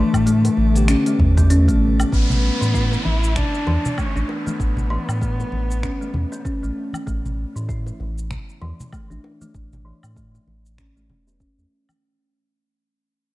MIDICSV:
0, 0, Header, 1, 9, 480
1, 0, Start_track
1, 0, Tempo, 618557
1, 1646, Time_signature, 4, 2, 24, 8
1, 10352, End_track
2, 0, Start_track
2, 0, Title_t, "Synth texture"
2, 0, Program_c, 0, 99
2, 0, Note_on_c, 0, 86, 87
2, 1656, Note_off_c, 0, 86, 0
2, 10352, End_track
3, 0, Start_track
3, 0, Title_t, "Cello"
3, 0, Program_c, 1, 42
3, 0, Note_on_c, 1, 57, 127
3, 1164, Note_off_c, 1, 57, 0
3, 1172, Note_on_c, 1, 57, 104
3, 1654, Note_on_c, 1, 59, 116
3, 1666, Note_off_c, 1, 57, 0
3, 2367, Note_on_c, 1, 64, 103
3, 2379, Note_off_c, 1, 59, 0
3, 2610, Note_on_c, 1, 62, 105
3, 2622, Note_off_c, 1, 64, 0
3, 3091, Note_on_c, 1, 61, 99
3, 3103, Note_off_c, 1, 62, 0
3, 3283, Note_off_c, 1, 61, 0
3, 3283, Note_on_c, 1, 61, 71
3, 3327, Note_on_c, 1, 59, 109
3, 3339, Note_off_c, 1, 61, 0
3, 4958, Note_off_c, 1, 59, 0
3, 4963, Note_on_c, 1, 59, 54
3, 5004, Note_on_c, 1, 57, 77
3, 5015, Note_off_c, 1, 59, 0
3, 5485, Note_off_c, 1, 57, 0
3, 10352, End_track
4, 0, Start_track
4, 0, Title_t, "Tine electric piano"
4, 0, Program_c, 2, 4
4, 569, Note_on_c, 2, 50, 82
4, 586, Note_on_c, 2, 59, 75
4, 600, Note_on_c, 2, 67, 90
4, 1614, Note_off_c, 2, 50, 0
4, 1622, Note_off_c, 2, 59, 0
4, 1629, Note_off_c, 2, 67, 0
4, 10352, End_track
5, 0, Start_track
5, 0, Title_t, "Kalimba"
5, 0, Program_c, 3, 108
5, 0, Note_on_c, 3, 52, 108
5, 193, Note_off_c, 3, 52, 0
5, 203, Note_on_c, 3, 57, 89
5, 674, Note_off_c, 3, 57, 0
5, 686, Note_on_c, 3, 61, 86
5, 811, Note_off_c, 3, 61, 0
5, 825, Note_on_c, 3, 57, 79
5, 920, Note_off_c, 3, 57, 0
5, 1065, Note_on_c, 3, 59, 102
5, 1122, Note_off_c, 3, 59, 0
5, 1164, Note_on_c, 3, 61, 106
5, 1290, Note_off_c, 3, 61, 0
5, 1304, Note_on_c, 3, 57, 85
5, 1635, Note_off_c, 3, 57, 0
5, 1646, Note_on_c, 3, 57, 78
5, 2012, Note_off_c, 3, 57, 0
5, 2024, Note_on_c, 3, 52, 78
5, 2082, Note_off_c, 3, 52, 0
5, 2126, Note_on_c, 3, 64, 82
5, 2206, Note_off_c, 3, 64, 0
5, 2846, Note_on_c, 3, 52, 91
5, 3076, Note_off_c, 3, 52, 0
5, 3087, Note_on_c, 3, 57, 81
5, 3212, Note_off_c, 3, 57, 0
5, 3226, Note_on_c, 3, 62, 71
5, 3321, Note_off_c, 3, 62, 0
5, 3463, Note_on_c, 3, 57, 74
5, 3560, Note_off_c, 3, 57, 0
5, 3804, Note_on_c, 3, 52, 104
5, 4035, Note_off_c, 3, 52, 0
5, 4045, Note_on_c, 3, 57, 79
5, 4515, Note_off_c, 3, 57, 0
5, 4526, Note_on_c, 3, 61, 74
5, 4651, Note_off_c, 3, 61, 0
5, 4665, Note_on_c, 3, 57, 71
5, 4761, Note_off_c, 3, 57, 0
5, 4905, Note_on_c, 3, 59, 95
5, 4962, Note_off_c, 3, 59, 0
5, 5003, Note_on_c, 3, 61, 89
5, 5130, Note_off_c, 3, 61, 0
5, 5143, Note_on_c, 3, 57, 74
5, 5475, Note_off_c, 3, 57, 0
5, 5483, Note_on_c, 3, 57, 75
5, 5850, Note_off_c, 3, 57, 0
5, 5863, Note_on_c, 3, 52, 71
5, 5921, Note_off_c, 3, 52, 0
5, 5964, Note_on_c, 3, 64, 80
5, 6044, Note_off_c, 3, 64, 0
5, 6686, Note_on_c, 3, 52, 87
5, 6916, Note_off_c, 3, 52, 0
5, 6927, Note_on_c, 3, 57, 77
5, 7052, Note_off_c, 3, 57, 0
5, 7063, Note_on_c, 3, 62, 71
5, 7160, Note_off_c, 3, 62, 0
5, 7304, Note_on_c, 3, 57, 69
5, 7400, Note_off_c, 3, 57, 0
5, 7644, Note_on_c, 3, 52, 89
5, 7875, Note_off_c, 3, 52, 0
5, 7887, Note_on_c, 3, 57, 76
5, 8356, Note_off_c, 3, 57, 0
5, 8368, Note_on_c, 3, 61, 71
5, 8493, Note_off_c, 3, 61, 0
5, 8508, Note_on_c, 3, 57, 70
5, 8602, Note_off_c, 3, 57, 0
5, 8748, Note_on_c, 3, 59, 93
5, 8804, Note_off_c, 3, 59, 0
5, 8848, Note_on_c, 3, 61, 86
5, 8973, Note_off_c, 3, 61, 0
5, 8989, Note_on_c, 3, 57, 70
5, 9317, Note_off_c, 3, 57, 0
5, 10352, End_track
6, 0, Start_track
6, 0, Title_t, "Ambient pad"
6, 0, Program_c, 4, 92
6, 0, Note_on_c, 4, 50, 70
6, 0, Note_on_c, 4, 55, 73
6, 0, Note_on_c, 4, 57, 79
6, 0, Note_on_c, 4, 71, 80
6, 1643, Note_off_c, 4, 57, 0
6, 1644, Note_off_c, 4, 50, 0
6, 1644, Note_off_c, 4, 55, 0
6, 1647, Note_off_c, 4, 71, 0
6, 10352, End_track
7, 0, Start_track
7, 0, Title_t, "Sub bass"
7, 0, Program_c, 5, 38
7, 106, Note_on_c, 5, 45, 92
7, 384, Note_off_c, 5, 45, 0
7, 446, Note_on_c, 5, 33, 90
7, 739, Note_off_c, 5, 33, 0
7, 927, Note_on_c, 5, 40, 93
7, 1308, Note_on_c, 5, 33, 95
7, 1319, Note_off_c, 5, 40, 0
7, 1585, Note_off_c, 5, 33, 0
7, 1648, Note_on_c, 5, 33, 99
7, 1941, Note_off_c, 5, 33, 0
7, 2030, Note_on_c, 5, 45, 86
7, 2306, Note_off_c, 5, 45, 0
7, 2369, Note_on_c, 5, 33, 87
7, 2661, Note_off_c, 5, 33, 0
7, 2846, Note_on_c, 5, 40, 92
7, 2932, Note_off_c, 5, 40, 0
7, 3225, Note_on_c, 5, 33, 98
7, 3287, Note_off_c, 5, 33, 0
7, 3567, Note_on_c, 5, 33, 102
7, 3860, Note_off_c, 5, 33, 0
7, 3945, Note_on_c, 5, 45, 81
7, 4224, Note_off_c, 5, 45, 0
7, 4284, Note_on_c, 5, 33, 86
7, 4578, Note_off_c, 5, 33, 0
7, 4763, Note_on_c, 5, 40, 89
7, 4850, Note_off_c, 5, 40, 0
7, 5145, Note_on_c, 5, 33, 97
7, 5207, Note_off_c, 5, 33, 0
7, 5486, Note_on_c, 5, 33, 102
7, 5780, Note_off_c, 5, 33, 0
7, 5865, Note_on_c, 5, 45, 84
7, 6144, Note_off_c, 5, 45, 0
7, 6205, Note_on_c, 5, 33, 80
7, 6499, Note_off_c, 5, 33, 0
7, 6685, Note_on_c, 5, 40, 83
7, 6771, Note_off_c, 5, 40, 0
7, 7067, Note_on_c, 5, 33, 97
7, 7128, Note_off_c, 5, 33, 0
7, 7406, Note_on_c, 5, 33, 95
7, 7699, Note_off_c, 5, 33, 0
7, 7787, Note_on_c, 5, 45, 86
7, 8064, Note_off_c, 5, 45, 0
7, 8127, Note_on_c, 5, 33, 83
7, 8605, Note_on_c, 5, 28, 91
7, 8617, Note_off_c, 5, 33, 0
7, 8899, Note_off_c, 5, 28, 0
7, 8985, Note_on_c, 5, 40, 75
7, 9047, Note_off_c, 5, 40, 0
7, 10352, End_track
8, 0, Start_track
8, 0, Title_t, "Downlifter"
8, 0, Program_c, 6, 103
8, 1650, Note_on_c, 6, 60, 76
8, 5488, Note_off_c, 6, 60, 0
8, 10352, End_track
9, 0, Start_track
9, 0, Title_t, "Drums"
9, 107, Note_on_c, 9, 36, 58
9, 109, Note_on_c, 9, 46, 33
9, 109, Note_on_c, 9, 77, 82
9, 114, Note_on_c, 9, 82, 61
9, 185, Note_off_c, 9, 36, 0
9, 187, Note_off_c, 9, 46, 0
9, 187, Note_off_c, 9, 77, 0
9, 192, Note_off_c, 9, 82, 0
9, 208, Note_on_c, 9, 46, 68
9, 213, Note_on_c, 9, 82, 53
9, 286, Note_off_c, 9, 46, 0
9, 290, Note_off_c, 9, 82, 0
9, 347, Note_on_c, 9, 46, 51
9, 349, Note_on_c, 9, 60, 57
9, 352, Note_on_c, 9, 82, 35
9, 425, Note_off_c, 9, 46, 0
9, 426, Note_off_c, 9, 60, 0
9, 430, Note_off_c, 9, 82, 0
9, 443, Note_on_c, 9, 60, 35
9, 521, Note_off_c, 9, 60, 0
9, 587, Note_on_c, 9, 46, 33
9, 591, Note_on_c, 9, 82, 67
9, 664, Note_off_c, 9, 46, 0
9, 669, Note_off_c, 9, 82, 0
9, 684, Note_on_c, 9, 26, 78
9, 684, Note_on_c, 9, 46, 72
9, 689, Note_on_c, 9, 82, 54
9, 762, Note_off_c, 9, 26, 0
9, 762, Note_off_c, 9, 46, 0
9, 767, Note_off_c, 9, 82, 0
9, 825, Note_on_c, 9, 46, 47
9, 830, Note_on_c, 9, 82, 33
9, 903, Note_off_c, 9, 46, 0
9, 908, Note_off_c, 9, 82, 0
9, 920, Note_on_c, 9, 63, 39
9, 928, Note_on_c, 9, 36, 103
9, 928, Note_on_c, 9, 64, 98
9, 998, Note_off_c, 9, 63, 0
9, 1005, Note_off_c, 9, 36, 0
9, 1006, Note_off_c, 9, 64, 0
9, 1067, Note_on_c, 9, 46, 36
9, 1068, Note_on_c, 9, 36, 104
9, 1072, Note_on_c, 9, 82, 66
9, 1145, Note_off_c, 9, 36, 0
9, 1145, Note_off_c, 9, 46, 0
9, 1150, Note_off_c, 9, 82, 0
9, 1166, Note_on_c, 9, 46, 76
9, 1171, Note_on_c, 9, 82, 58
9, 1244, Note_off_c, 9, 46, 0
9, 1249, Note_off_c, 9, 82, 0
9, 1303, Note_on_c, 9, 60, 38
9, 1308, Note_on_c, 9, 36, 57
9, 1308, Note_on_c, 9, 46, 49
9, 1311, Note_on_c, 9, 63, 36
9, 1313, Note_on_c, 9, 82, 33
9, 1380, Note_off_c, 9, 60, 0
9, 1386, Note_off_c, 9, 36, 0
9, 1386, Note_off_c, 9, 46, 0
9, 1389, Note_off_c, 9, 63, 0
9, 1391, Note_off_c, 9, 82, 0
9, 1550, Note_on_c, 9, 46, 35
9, 1550, Note_on_c, 9, 77, 85
9, 1554, Note_on_c, 9, 82, 68
9, 1627, Note_off_c, 9, 46, 0
9, 1627, Note_off_c, 9, 77, 0
9, 1632, Note_off_c, 9, 82, 0
9, 1649, Note_on_c, 9, 36, 98
9, 1654, Note_on_c, 9, 82, 52
9, 1727, Note_off_c, 9, 36, 0
9, 1732, Note_off_c, 9, 82, 0
9, 1786, Note_on_c, 9, 64, 93
9, 1795, Note_on_c, 9, 82, 31
9, 1863, Note_off_c, 9, 64, 0
9, 1872, Note_off_c, 9, 82, 0
9, 2035, Note_on_c, 9, 82, 65
9, 2113, Note_off_c, 9, 82, 0
9, 2129, Note_on_c, 9, 36, 95
9, 2135, Note_on_c, 9, 82, 52
9, 2206, Note_off_c, 9, 36, 0
9, 2213, Note_off_c, 9, 82, 0
9, 2263, Note_on_c, 9, 60, 53
9, 2274, Note_on_c, 9, 82, 33
9, 2340, Note_off_c, 9, 60, 0
9, 2352, Note_off_c, 9, 82, 0
9, 2368, Note_on_c, 9, 63, 66
9, 2373, Note_on_c, 9, 60, 36
9, 2446, Note_off_c, 9, 63, 0
9, 2451, Note_off_c, 9, 60, 0
9, 2513, Note_on_c, 9, 82, 64
9, 2591, Note_off_c, 9, 82, 0
9, 2607, Note_on_c, 9, 26, 75
9, 2609, Note_on_c, 9, 36, 98
9, 2609, Note_on_c, 9, 64, 93
9, 2612, Note_on_c, 9, 82, 49
9, 2685, Note_off_c, 9, 26, 0
9, 2686, Note_off_c, 9, 36, 0
9, 2687, Note_off_c, 9, 64, 0
9, 2690, Note_off_c, 9, 82, 0
9, 2751, Note_on_c, 9, 82, 31
9, 2829, Note_off_c, 9, 82, 0
9, 2846, Note_on_c, 9, 60, 61
9, 2853, Note_on_c, 9, 63, 75
9, 2924, Note_off_c, 9, 60, 0
9, 2930, Note_off_c, 9, 63, 0
9, 2991, Note_on_c, 9, 82, 68
9, 2994, Note_on_c, 9, 64, 82
9, 3069, Note_off_c, 9, 82, 0
9, 3071, Note_off_c, 9, 64, 0
9, 3087, Note_on_c, 9, 77, 75
9, 3088, Note_on_c, 9, 36, 98
9, 3092, Note_on_c, 9, 82, 52
9, 3165, Note_off_c, 9, 77, 0
9, 3166, Note_off_c, 9, 36, 0
9, 3170, Note_off_c, 9, 82, 0
9, 3231, Note_on_c, 9, 63, 59
9, 3233, Note_on_c, 9, 82, 33
9, 3309, Note_off_c, 9, 63, 0
9, 3311, Note_off_c, 9, 82, 0
9, 3329, Note_on_c, 9, 60, 70
9, 3407, Note_off_c, 9, 60, 0
9, 3469, Note_on_c, 9, 63, 65
9, 3471, Note_on_c, 9, 82, 64
9, 3547, Note_off_c, 9, 63, 0
9, 3549, Note_off_c, 9, 82, 0
9, 3568, Note_on_c, 9, 36, 109
9, 3574, Note_on_c, 9, 82, 53
9, 3646, Note_off_c, 9, 36, 0
9, 3651, Note_off_c, 9, 82, 0
9, 3700, Note_on_c, 9, 64, 80
9, 3713, Note_on_c, 9, 82, 35
9, 3777, Note_off_c, 9, 64, 0
9, 3791, Note_off_c, 9, 82, 0
9, 3948, Note_on_c, 9, 77, 70
9, 3953, Note_on_c, 9, 82, 58
9, 4025, Note_off_c, 9, 77, 0
9, 4030, Note_off_c, 9, 82, 0
9, 4048, Note_on_c, 9, 36, 100
9, 4052, Note_on_c, 9, 82, 53
9, 4125, Note_off_c, 9, 36, 0
9, 4130, Note_off_c, 9, 82, 0
9, 4191, Note_on_c, 9, 60, 50
9, 4192, Note_on_c, 9, 82, 34
9, 4268, Note_off_c, 9, 60, 0
9, 4269, Note_off_c, 9, 82, 0
9, 4284, Note_on_c, 9, 60, 35
9, 4285, Note_on_c, 9, 63, 64
9, 4361, Note_off_c, 9, 60, 0
9, 4363, Note_off_c, 9, 63, 0
9, 4431, Note_on_c, 9, 82, 66
9, 4509, Note_off_c, 9, 82, 0
9, 4526, Note_on_c, 9, 26, 75
9, 4527, Note_on_c, 9, 36, 98
9, 4531, Note_on_c, 9, 82, 52
9, 4604, Note_off_c, 9, 26, 0
9, 4605, Note_off_c, 9, 36, 0
9, 4609, Note_off_c, 9, 82, 0
9, 4672, Note_on_c, 9, 82, 34
9, 4750, Note_off_c, 9, 82, 0
9, 4762, Note_on_c, 9, 63, 83
9, 4765, Note_on_c, 9, 64, 94
9, 4839, Note_off_c, 9, 63, 0
9, 4842, Note_off_c, 9, 64, 0
9, 4910, Note_on_c, 9, 82, 64
9, 4988, Note_off_c, 9, 82, 0
9, 5007, Note_on_c, 9, 36, 108
9, 5012, Note_on_c, 9, 82, 59
9, 5084, Note_off_c, 9, 36, 0
9, 5089, Note_off_c, 9, 82, 0
9, 5151, Note_on_c, 9, 82, 32
9, 5229, Note_off_c, 9, 82, 0
9, 5380, Note_on_c, 9, 63, 63
9, 5386, Note_on_c, 9, 77, 72
9, 5391, Note_on_c, 9, 82, 65
9, 5458, Note_off_c, 9, 63, 0
9, 5464, Note_off_c, 9, 77, 0
9, 5469, Note_off_c, 9, 82, 0
9, 5487, Note_on_c, 9, 36, 100
9, 5492, Note_on_c, 9, 82, 54
9, 5564, Note_off_c, 9, 36, 0
9, 5570, Note_off_c, 9, 82, 0
9, 5632, Note_on_c, 9, 64, 74
9, 5632, Note_on_c, 9, 82, 32
9, 5709, Note_off_c, 9, 64, 0
9, 5710, Note_off_c, 9, 82, 0
9, 5872, Note_on_c, 9, 82, 57
9, 5949, Note_off_c, 9, 82, 0
9, 5967, Note_on_c, 9, 36, 99
9, 5972, Note_on_c, 9, 82, 50
9, 6045, Note_off_c, 9, 36, 0
9, 6050, Note_off_c, 9, 82, 0
9, 6102, Note_on_c, 9, 60, 50
9, 6111, Note_on_c, 9, 82, 33
9, 6180, Note_off_c, 9, 60, 0
9, 6188, Note_off_c, 9, 82, 0
9, 6208, Note_on_c, 9, 60, 31
9, 6212, Note_on_c, 9, 63, 56
9, 6285, Note_off_c, 9, 60, 0
9, 6289, Note_off_c, 9, 63, 0
9, 6350, Note_on_c, 9, 82, 67
9, 6428, Note_off_c, 9, 82, 0
9, 6446, Note_on_c, 9, 26, 66
9, 6447, Note_on_c, 9, 36, 92
9, 6450, Note_on_c, 9, 64, 83
9, 6451, Note_on_c, 9, 82, 53
9, 6524, Note_off_c, 9, 26, 0
9, 6525, Note_off_c, 9, 36, 0
9, 6528, Note_off_c, 9, 64, 0
9, 6528, Note_off_c, 9, 82, 0
9, 6590, Note_on_c, 9, 82, 33
9, 6668, Note_off_c, 9, 82, 0
9, 6685, Note_on_c, 9, 60, 53
9, 6689, Note_on_c, 9, 63, 78
9, 6763, Note_off_c, 9, 60, 0
9, 6767, Note_off_c, 9, 63, 0
9, 6831, Note_on_c, 9, 64, 90
9, 6831, Note_on_c, 9, 82, 63
9, 6909, Note_off_c, 9, 64, 0
9, 6909, Note_off_c, 9, 82, 0
9, 6926, Note_on_c, 9, 77, 67
9, 6928, Note_on_c, 9, 36, 112
9, 6931, Note_on_c, 9, 82, 55
9, 7004, Note_off_c, 9, 77, 0
9, 7005, Note_off_c, 9, 36, 0
9, 7009, Note_off_c, 9, 82, 0
9, 7068, Note_on_c, 9, 63, 62
9, 7070, Note_on_c, 9, 82, 32
9, 7145, Note_off_c, 9, 63, 0
9, 7147, Note_off_c, 9, 82, 0
9, 7171, Note_on_c, 9, 60, 58
9, 7248, Note_off_c, 9, 60, 0
9, 7307, Note_on_c, 9, 63, 60
9, 7308, Note_on_c, 9, 82, 63
9, 7384, Note_off_c, 9, 63, 0
9, 7385, Note_off_c, 9, 82, 0
9, 7407, Note_on_c, 9, 36, 96
9, 7409, Note_on_c, 9, 82, 50
9, 7485, Note_off_c, 9, 36, 0
9, 7487, Note_off_c, 9, 82, 0
9, 7548, Note_on_c, 9, 82, 30
9, 7551, Note_on_c, 9, 64, 77
9, 7626, Note_off_c, 9, 82, 0
9, 7629, Note_off_c, 9, 64, 0
9, 7785, Note_on_c, 9, 77, 64
9, 7790, Note_on_c, 9, 82, 59
9, 7863, Note_off_c, 9, 77, 0
9, 7867, Note_off_c, 9, 82, 0
9, 7887, Note_on_c, 9, 36, 100
9, 7891, Note_on_c, 9, 82, 50
9, 7965, Note_off_c, 9, 36, 0
9, 7969, Note_off_c, 9, 82, 0
9, 8030, Note_on_c, 9, 60, 42
9, 8030, Note_on_c, 9, 82, 31
9, 8108, Note_off_c, 9, 60, 0
9, 8108, Note_off_c, 9, 82, 0
9, 8129, Note_on_c, 9, 60, 31
9, 8129, Note_on_c, 9, 63, 54
9, 8206, Note_off_c, 9, 60, 0
9, 8207, Note_off_c, 9, 63, 0
9, 8271, Note_on_c, 9, 82, 65
9, 8348, Note_off_c, 9, 82, 0
9, 8368, Note_on_c, 9, 26, 62
9, 8368, Note_on_c, 9, 36, 96
9, 8373, Note_on_c, 9, 82, 50
9, 8445, Note_off_c, 9, 26, 0
9, 8445, Note_off_c, 9, 36, 0
9, 8450, Note_off_c, 9, 82, 0
9, 8513, Note_on_c, 9, 82, 32
9, 8591, Note_off_c, 9, 82, 0
9, 8610, Note_on_c, 9, 63, 62
9, 8610, Note_on_c, 9, 64, 89
9, 8687, Note_off_c, 9, 63, 0
9, 8688, Note_off_c, 9, 64, 0
9, 8752, Note_on_c, 9, 82, 62
9, 8829, Note_off_c, 9, 82, 0
9, 8848, Note_on_c, 9, 36, 102
9, 8851, Note_on_c, 9, 82, 54
9, 8925, Note_off_c, 9, 36, 0
9, 8929, Note_off_c, 9, 82, 0
9, 8991, Note_on_c, 9, 82, 31
9, 9069, Note_off_c, 9, 82, 0
9, 9226, Note_on_c, 9, 77, 67
9, 9228, Note_on_c, 9, 63, 58
9, 9231, Note_on_c, 9, 82, 66
9, 9303, Note_off_c, 9, 77, 0
9, 9305, Note_off_c, 9, 63, 0
9, 9308, Note_off_c, 9, 82, 0
9, 10352, End_track
0, 0, End_of_file